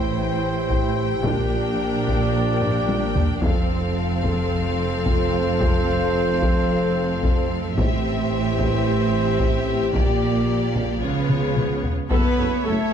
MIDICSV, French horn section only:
0, 0, Header, 1, 2, 480
1, 0, Start_track
1, 0, Tempo, 542986
1, 1110, Time_signature, 4, 2, 24, 8
1, 11433, End_track
2, 0, Start_track
2, 0, Title_t, "French horn section"
2, 0, Program_c, 0, 60
2, 0, Note_on_c, 0, 52, 58
2, 0, Note_on_c, 0, 67, 59
2, 1075, Note_off_c, 0, 52, 0
2, 1119, Note_on_c, 0, 53, 64
2, 2869, Note_off_c, 0, 53, 0
2, 2869, Note_off_c, 0, 67, 0
2, 3019, Note_on_c, 0, 69, 67
2, 3020, Note_on_c, 0, 53, 66
2, 6830, Note_off_c, 0, 53, 0
2, 6830, Note_off_c, 0, 69, 0
2, 6867, Note_on_c, 0, 67, 66
2, 6873, Note_on_c, 0, 52, 65
2, 8756, Note_off_c, 0, 52, 0
2, 8790, Note_on_c, 0, 53, 65
2, 9585, Note_off_c, 0, 67, 0
2, 9735, Note_on_c, 0, 68, 57
2, 10427, Note_off_c, 0, 68, 0
2, 10434, Note_off_c, 0, 53, 0
2, 10693, Note_on_c, 0, 59, 81
2, 11147, Note_off_c, 0, 59, 0
2, 11195, Note_on_c, 0, 57, 67
2, 11433, Note_off_c, 0, 57, 0
2, 11433, End_track
0, 0, End_of_file